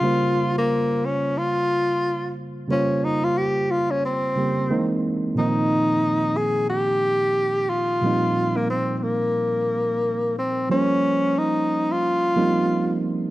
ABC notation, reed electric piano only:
X:1
M:4/4
L:1/8
Q:"Swing 16ths" 1/4=90
K:Bbdor
V:1 name="Reed electric piano"
[D,G,B,Fc]8 | [D,G,B,Fc]4- [D,G,B,Fc] [D,G,B,CG] [^D,=E,^G,B,C^D]2 | [B,,E,F,B,CE]8 | [B,,F,G,B,CE]8 |
[F,G,B,Dc]4 z [F,G,B,CE]3 |]